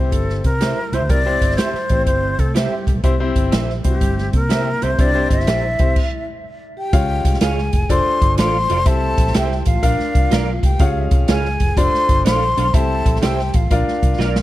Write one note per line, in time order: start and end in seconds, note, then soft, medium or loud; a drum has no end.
0.00 0.10 C2 medium
0.00 0.48 C4 medium
0.00 0.48 E4 medium
0.00 0.13 G4 medium
0.00 0.48 G4 medium
0.00 0.48 C5 medium
0.12 0.40 G1 medium
0.12 0.44 A4 medium
0.12 kick medium
0.12 closed hi-hat medium
0.30 snare soft
0.44 0.73 C3 medium
0.44 0.95 A#4 medium
0.44 kick medium
0.44 closed hi-hat medium
0.61 0.78 E4 medium
0.61 0.78 G4 medium
0.61 0.79 C5 medium
0.61 0.79 E5 medium
0.61 snare medium
0.61 closed hi-hat medium
0.92 1.00 C2 medium
0.92 1.00 E4 medium
0.92 1.00 G4 medium
0.92 1.11 C5 loud
0.92 1.01 C5 medium
0.92 1.01 E5 medium
0.92 closed hi-hat medium
1.01 1.08 D2 medium
1.09 1.37 C2 medium
1.09 1.19 C4 medium
1.09 1.19 E4 medium
1.09 1.19 G4 medium
1.09 1.19 A#4 medium
1.09 1.59 D5 loud
1.09 kick loud
1.09 closed hi-hat medium
1.26 1.57 C4 medium
1.26 1.57 E4 medium
1.26 1.57 G4 medium
1.26 1.57 C5 medium
1.41 1.56 G1 medium
1.41 kick medium
1.41 closed hi-hat medium
1.51 snare soft
1.57 1.75 E4 medium
1.57 1.76 G4 medium
1.57 2.05 C5 loud
1.57 1.76 C5 loud
1.57 1.76 E5 medium
1.57 snare loud
1.57 closed hi-hat medium
1.74 muted fingered electric bass stroke soft
1.74 snare soft
1.89 2.05 A1 loud
1.89 2.43 C4 medium
1.89 2.43 E4 medium
1.89 2.43 G4 medium
1.89 2.43 C5 medium
1.89 kick medium
1.89 closed hi-hat medium
2.06 2.34 G1 medium
2.06 2.37 C4 medium
2.06 2.41 C5 medium
2.06 kick medium
2.06 closed hi-hat medium
2.39 2.67 C3 medium
2.39 2.56 A3 medium
2.39 2.56 A4 medium
2.39 kick medium
2.39 closed hi-hat medium
2.55 2.96 G3 medium
2.55 2.72 E4 medium
2.55 2.96 G4 medium
2.55 2.73 G4 medium
2.55 2.73 C5 medium
2.55 2.73 E5 loud
2.55 snare loud
2.55 closed hi-hat medium
2.87 2.95 C2 medium
2.87 kick medium
2.87 closed hi-hat medium
2.96 3.03 B1 medium
3.04 3.31 C2 medium
3.04 3.13 C4 medium
3.04 3.13 E4 medium
3.04 3.13 G4 medium
3.04 3.13 C5 medium
3.04 kick loud
3.04 closed hi-hat medium
3.20 3.51 C4 loud
3.20 3.51 E4 medium
3.20 3.51 G4 medium
3.20 3.51 C5 medium
3.36 3.50 G1 medium
3.36 kick medium
3.36 closed hi-hat medium
3.52 3.80 A#1 medium
3.52 3.69 E4 medium
3.52 3.70 G4 medium
3.52 3.70 C5 medium
3.52 3.70 E5 medium
3.52 snare loud
3.52 closed hi-hat medium
3.70 snare soft
3.84 3.99 C2 medium
3.84 4.30 G3 medium
3.84 4.37 C4 medium
3.84 4.37 E4 medium
3.84 4.37 G4 medium
3.84 4.31 G4 medium
3.84 4.37 C5 medium
3.84 kick medium
3.84 closed hi-hat medium
4.01 4.29 G1 medium
4.01 kick medium
4.01 closed hi-hat medium
4.18 snare soft
4.33 4.75 C3 medium
4.33 4.79 A#3 medium
4.33 4.84 A#4 medium
4.33 kick medium
4.33 closed hi-hat medium
4.49 4.67 E4 medium
4.49 4.67 G4 medium
4.49 4.68 C5 medium
4.49 4.68 E5 loud
4.49 snare loud
4.49 closed hi-hat medium
4.82 4.97 C2 medium
4.82 4.99 C4 medium
4.82 4.89 E4 medium
4.82 4.89 G4 medium
4.82 5.02 C5 loud
4.82 4.90 C5 medium
4.82 4.90 E5 medium
4.82 closed hi-hat medium
4.98 5.26 C2 loud
4.98 5.08 C4 medium
4.98 5.30 D4 medium
4.98 5.08 E4 medium
4.98 5.08 G4 medium
4.98 5.07 C5 medium
4.98 5.31 D5 loud
4.98 kick loud
4.98 closed hi-hat medium
5.15 5.45 C4 medium
5.15 5.45 E4 medium
5.15 5.46 G4 medium
5.15 5.45 C5 medium
5.30 5.45 G1 medium
5.30 6.24 E4 medium
5.30 6.24 E5 loud
5.30 kick medium
5.30 closed hi-hat medium
5.40 snare soft
5.47 5.75 A#1 medium
5.47 5.64 E4 medium
5.47 5.65 G4 medium
5.47 5.65 C5 medium
5.47 5.65 E5 medium
5.47 snare loud
5.47 closed hi-hat loud
5.79 5.94 C2 medium
5.79 5.96 C4 medium
5.79 5.96 E4 medium
5.79 5.96 G4 medium
5.79 5.96 C5 medium
5.79 kick loud
5.79 closed hi-hat medium
5.96 kick loud
5.96 crash medium
6.77 7.37 G4 medium
6.77 7.38 G5 medium
6.93 7.20 C#2 loud
6.93 7.49 G#3 medium
6.93 7.49 C#4 medium
6.93 7.49 F4 medium
6.93 7.49 C#5 medium
6.93 7.49 F5 medium
6.93 kick loud
6.93 closed hi-hat medium
7.25 7.39 C2 medium
7.25 kick loud
7.25 closed hi-hat medium
7.34 snare soft
7.41 7.68 C#2 loud
7.41 7.58 F4 medium
7.41 7.58 G#4 medium
7.41 7.87 G#4 medium
7.41 7.59 C#5 medium
7.41 7.59 F5 loud
7.41 7.93 G#5 loud
7.41 snare loud
7.41 closed hi-hat loud
7.58 snare soft
7.73 7.88 F1 loud
7.73 kick medium
7.73 closed hi-hat medium
7.89 8.03 F1 loud
7.89 8.45 D4 medium
7.89 8.45 F4 medium
7.89 8.45 A4 medium
7.89 8.45 C5 medium
7.89 8.39 C5 medium
7.89 8.46 D5 medium
7.89 8.38 C6 loud
7.89 kick medium
7.89 closed hi-hat medium
8.06 muted fingered electric bass stroke soft
8.22 8.36 G1 medium
8.22 kick medium
8.22 closed hi-hat medium
8.38 8.66 A1 loud
8.38 8.55 F4 loud
8.38 8.55 A4 medium
8.38 8.84 C5 loud
8.38 8.56 D5 loud
8.38 8.56 F5 loud
8.38 8.89 C6 loud
8.38 snare loud
8.38 closed hi-hat loud
8.69 8.84 F1 medium
8.69 8.77 F4 medium
8.69 8.77 A4 medium
8.69 8.77 D5 medium
8.69 8.78 F5 medium
8.69 closed hi-hat medium
8.85 9.14 C2 loud
8.85 9.42 C4 medium
8.85 9.42 E4 medium
8.85 9.42 G4 medium
8.85 9.36 A4 medium
8.85 9.42 C5 medium
8.85 9.42 E5 medium
8.85 9.37 A5 loud
8.85 kick loud
8.85 closed hi-hat medium
9.18 9.32 A#1 medium
9.18 kick medium
9.18 closed hi-hat medium
9.27 snare soft
9.34 9.63 C2 medium
9.34 9.52 E4 medium
9.34 9.52 G4 medium
9.34 9.67 G4 medium
9.34 9.52 C5 medium
9.34 9.53 E5 loud
9.34 9.66 G5 medium
9.34 snare loud
9.34 closed hi-hat loud
9.52 snare soft
9.66 9.81 A1 loud
9.66 10.60 F4 medium
9.66 10.59 F5 medium
9.66 kick medium
9.66 closed hi-hat medium
9.83 9.97 A#1 loud
9.83 10.39 D4 medium
9.83 10.39 F4 medium
9.83 10.39 A#4 medium
9.83 10.39 D5 medium
9.83 10.39 F5 medium
9.83 kick medium
9.83 closed hi-hat medium
10.00 muted fingered electric bass stroke medium
10.00 snare soft
10.15 10.29 C2 medium
10.15 kick medium
10.15 closed hi-hat medium
10.31 10.59 B1 medium
10.31 10.48 F4 loud
10.31 10.49 A#4 loud
10.31 10.49 D5 medium
10.31 10.49 F5 loud
10.31 snare loud
10.31 closed hi-hat medium
10.63 10.78 C2 medium
10.63 11.05 G4 medium
10.63 11.06 G5 medium
10.63 kick medium
10.63 closed hi-hat medium
10.79 11.07 C#2 loud
10.79 11.36 C#4 medium
10.79 11.36 F4 medium
10.79 11.36 G#4 medium
10.79 11.36 C#5 medium
10.79 11.36 F5 medium
10.79 kick loud
10.79 closed hi-hat medium
11.11 11.26 C2 loud
11.11 kick loud
11.11 closed hi-hat medium
11.28 11.56 C#2 loud
11.28 11.45 F4 medium
11.28 11.46 G#4 loud
11.28 11.74 G#4 medium
11.28 11.46 C#5 loud
11.28 11.46 F5 loud
11.28 11.79 G#5 loud
11.28 snare loud
11.28 closed hi-hat medium
11.45 snare soft
11.60 11.75 F1 loud
11.60 kick medium
11.60 closed hi-hat medium
11.77 11.91 F1 medium
11.77 12.33 D4 medium
11.77 12.33 F4 medium
11.77 11.85 G4 medium
11.77 12.33 C5 medium
11.77 12.25 C5 loud
11.77 12.33 D5 medium
11.77 12.26 C6 loud
11.77 kick medium
11.77 closed hi-hat medium
11.83 12.36 A4 medium
11.94 muted fingered electric bass stroke medium
11.94 snare soft
12.09 12.23 G1 medium
12.09 kick medium
12.09 closed hi-hat medium
12.25 12.53 A#1 medium
12.25 12.42 D4 medium
12.25 12.43 A4 medium
12.25 12.71 C5 medium
12.25 12.43 C5 medium
12.25 12.43 F5 loud
12.25 12.75 C6 loud
12.25 snare loud
12.25 closed hi-hat loud
12.57 12.72 B1 medium
12.57 12.64 D4 medium
12.57 12.64 A4 medium
12.57 12.65 C5 medium
12.57 12.65 F5 medium
12.57 closed hi-hat medium
12.74 13.02 C2 loud
12.74 13.30 C4 medium
12.74 13.30 E4 medium
12.74 13.30 G4 medium
12.74 13.23 A4 medium
12.74 13.30 C5 medium
12.74 13.30 E5 medium
12.74 13.22 A5 loud
12.74 kick loud
12.74 closed hi-hat medium
13.06 13.20 A#1 medium
13.06 kick medium
13.06 closed hi-hat medium
13.16 snare soft
13.21 13.50 C2 medium
13.21 13.39 E4 medium
13.21 13.52 G4 medium
13.21 13.39 G4 loud
13.21 13.40 C5 medium
13.21 13.40 E5 loud
13.21 13.57 G5 medium
13.21 snare loud
13.21 closed hi-hat loud
13.39 snare soft
13.54 13.69 A1 loud
13.54 14.42 F4 medium
13.54 14.42 F5 medium
13.54 kick loud
13.54 closed hi-hat medium
13.71 13.85 A#1 medium
13.71 14.27 D4 medium
13.71 14.27 F4 medium
13.71 14.27 A#4 medium
13.71 14.27 D5 medium
13.71 14.27 F5 medium
13.71 kick medium
13.71 closed hi-hat medium
13.87 muted fingered electric bass stroke medium
13.87 snare soft
14.03 14.17 C2 medium
14.03 kick loud
14.03 closed hi-hat medium
14.19 14.42 B1 loud
14.19 14.36 F4 medium
14.19 14.37 A#4 medium
14.19 14.37 D5 medium
14.19 14.37 F5 loud
14.19 snare medium
14.36 snare medium